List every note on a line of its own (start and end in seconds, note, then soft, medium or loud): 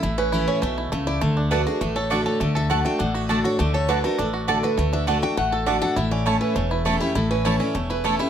0.00 0.45 A1 medium
0.00 0.60 A2 medium
0.00 0.62 A3 medium
0.00 0.31 E4 medium
0.00 1.13 A4 medium
0.00 0.15 E5 medium
0.18 0.47 C#4 medium
0.18 0.46 B4 medium
0.32 0.61 E3 medium
0.32 0.61 A3 medium
0.32 0.62 C#4 medium
0.32 0.74 E4 medium
0.32 0.62 E4 medium
0.47 0.89 C#4 medium
0.47 0.61 C#5 medium
0.62 0.88 B1 medium
0.62 0.91 B2 medium
0.62 0.91 A3 medium
0.62 0.77 E5 medium
0.78 1.06 E4 medium
0.92 1.17 C#2 medium
0.92 1.21 C#3 medium
0.92 1.21 A3 medium
1.07 1.22 E4 medium
1.07 1.21 D5 medium
1.21 1.63 D2 medium
1.21 1.50 D3 medium
1.21 1.51 A3 medium
1.37 2.10 D4 medium
1.51 1.66 D3 medium
1.51 1.60 A3 medium
1.51 1.81 A3 medium
1.51 1.66 A3 medium
1.51 1.67 D4 medium
1.51 1.60 F#4 medium
1.51 1.65 F#4 medium
1.51 1.66 B4 medium
1.51 1.61 D5 medium
1.51 1.61 A5 loud
1.66 1.81 D4 medium
1.66 1.80 F#4 medium
1.66 2.69 F#4 medium
1.66 1.81 G#4 medium
1.81 2.22 A1 medium
1.81 2.38 A2 medium
1.81 2.40 A3 medium
1.81 1.96 A4 medium
1.96 2.25 A4 medium
1.96 2.11 C#5 medium
2.10 2.39 D3 medium
2.10 2.20 A3 medium
2.10 2.39 A3 medium
2.10 2.99 D4 medium
2.10 2.40 D4 medium
2.10 2.20 F#4 medium
2.10 2.40 F#4 medium
2.10 2.20 D5 medium
2.10 2.25 E5 medium
2.10 2.20 A5 medium
2.26 2.55 A4 medium
2.26 2.40 C#5 medium
2.40 2.82 D2 medium
2.40 2.69 D3 medium
2.40 2.84 A3 medium
2.40 2.55 D5 medium
2.55 3.29 A4 medium
2.55 2.70 E5 medium
2.70 2.85 D3 medium
2.70 2.79 A3 medium
2.70 2.85 A3 medium
2.70 2.85 D4 medium
2.70 3.14 F#4 medium
2.70 2.79 F#4 medium
2.70 2.84 F#4 medium
2.70 2.79 D5 medium
2.70 2.85 F#5 medium
2.70 2.80 A5 medium
2.85 3.58 A3 medium
2.85 3.00 D4 medium
2.85 2.99 F#4 medium
2.85 3.00 G5 medium
2.99 3.41 A1 medium
2.99 3.56 A2 medium
2.99 4.18 D4 medium
2.99 3.15 F#5 medium
3.14 3.44 F#4 medium
3.14 3.29 E5 medium
3.29 3.44 D3 medium
3.29 3.38 A3 medium
3.29 3.44 A3 medium
3.29 3.45 D4 medium
3.29 3.38 F#4 medium
3.29 3.43 F#4 medium
3.29 3.74 A4 medium
3.29 3.44 D5 medium
3.29 3.39 D5 medium
3.29 3.39 A5 medium
3.44 3.59 D4 soft
3.44 3.88 F#4 medium
3.44 3.58 F#4 medium
3.44 3.59 C#5 medium
3.59 4.01 D2 medium
3.59 3.88 D3 medium
3.59 4.04 A3 medium
3.59 3.74 D5 medium
3.74 4.48 A4 medium
3.74 3.88 C#5 medium
3.88 4.03 D3 medium
3.88 3.98 A3 medium
3.88 4.04 A3 medium
3.88 4.04 D4 medium
3.88 3.98 F#4 medium
3.88 4.31 F#4 medium
3.88 4.03 F#4 medium
3.88 4.03 B4 medium
3.88 3.98 D5 medium
3.88 3.98 A5 medium
4.04 4.77 A3 medium
4.04 4.19 D4 medium
4.04 4.18 F#4 medium
4.04 4.19 A#4 medium
4.18 4.60 A1 medium
4.18 4.75 A2 medium
4.18 4.60 D4 medium
4.18 4.28 A4 medium
4.33 4.62 F#4 medium
4.48 4.76 D3 medium
4.48 4.57 A3 medium
4.48 4.77 A3 medium
4.48 4.77 D4 medium
4.48 4.57 F#4 medium
4.48 4.77 F#4 medium
4.48 5.52 A4 medium
4.48 4.63 D5 medium
4.48 4.57 D5 loud
4.48 4.58 A5 loud
4.63 5.05 F#4 medium
4.63 4.78 B4 medium
4.78 5.19 D2 medium
4.78 5.06 D3 medium
4.78 5.07 A3 medium
4.93 5.34 D4 medium
4.93 5.07 E5 loud
5.07 5.22 D3 medium
5.07 5.16 A3 medium
5.07 5.37 A3 medium
5.07 5.22 A3 medium
5.07 5.23 D4 medium
5.07 5.17 F#4 medium
5.07 5.21 F#4 medium
5.07 5.17 D5 medium
5.07 5.22 F#5 medium
5.07 5.17 A5 medium
5.22 5.37 D4 soft
5.22 5.36 F#4 medium
5.22 5.64 F#4 medium
5.22 5.37 G5 loud
5.37 5.79 A1 medium
5.37 5.94 A2 medium
5.37 6.55 A3 medium
5.37 5.52 F#5 medium
5.52 5.82 A4 medium
5.52 5.66 A4 medium
5.66 5.81 D3 medium
5.66 5.76 A3 medium
5.66 5.82 A3 medium
5.66 5.97 D4 medium
5.66 5.82 D4 medium
5.66 5.76 F#4 medium
5.66 5.81 F#4 medium
5.66 5.81 D5 medium
5.66 5.76 D5 medium
5.66 5.76 A5 loud
5.82 5.97 D4 soft
5.82 5.96 F#4 medium
5.82 7.22 A4 medium
5.82 5.96 F#5 loud
5.96 6.38 A1 medium
5.96 6.53 A2 medium
5.96 6.25 E4 medium
5.96 6.11 E5 medium
6.11 6.41 C#4 medium
6.11 6.26 D5 medium
6.26 6.54 E3 medium
6.26 6.35 A3 medium
6.26 6.55 A3 medium
6.26 6.55 C#4 medium
6.26 6.71 E4 medium
6.26 6.35 E4 medium
6.26 6.55 E4 medium
6.26 6.40 C#5 medium
6.26 6.36 C#5 medium
6.26 6.36 A5 loud
6.41 7.30 C#4 medium
6.41 6.56 B4 medium
6.56 6.97 E1 medium
6.56 7.12 E2 medium
6.56 6.85 A3 medium
6.56 6.71 C#5 medium
6.71 7.01 E4 medium
6.71 6.85 B4 medium
6.85 7.00 E3 medium
6.85 6.95 A3 medium
6.85 7.74 A3 medium
6.85 7.01 A3 medium
6.85 7.01 C#4 medium
6.85 6.95 E4 medium
6.85 7.00 E4 medium
6.85 7.00 A4 medium
6.85 6.95 C#5 medium
6.85 6.95 A5 medium
7.00 7.16 C#4 medium
7.00 7.15 E4 medium
7.00 7.15 G4 medium
7.15 7.57 A1 medium
7.15 7.72 A2 medium
7.15 7.44 E4 medium
7.15 7.30 A4 medium
7.31 7.60 C#4 medium
7.31 7.45 B4 medium
7.45 7.60 E3 medium
7.45 7.54 A3 medium
7.45 7.60 A3 medium
7.45 7.60 C#4 medium
7.45 7.89 E4 medium
7.45 7.55 E4 medium
7.45 7.58 E4 medium
7.45 7.60 C#5 medium
7.45 7.55 C#5 loud
7.45 7.55 A5 loud
7.59 8.30 C#4 medium
7.59 7.75 C#4 medium
7.59 7.74 E4 medium
7.59 7.75 D5 loud
7.74 8.16 E1 medium
7.74 8.30 E2 medium
7.74 8.04 A3 medium
7.74 7.90 C#5 medium
7.90 8.19 E4 medium
7.90 8.05 B4 medium
8.04 8.19 E3 medium
8.04 8.14 A3 medium
8.04 8.30 A3 medium
8.04 8.19 A3 medium
8.04 8.19 C#4 medium
8.04 8.14 E4 medium
8.04 8.18 E4 medium
8.04 8.19 A4 medium
8.04 8.14 C#5 medium
8.04 8.14 A5 medium
8.19 8.30 C#4 medium
8.19 8.30 E4 medium
8.19 8.30 G4 medium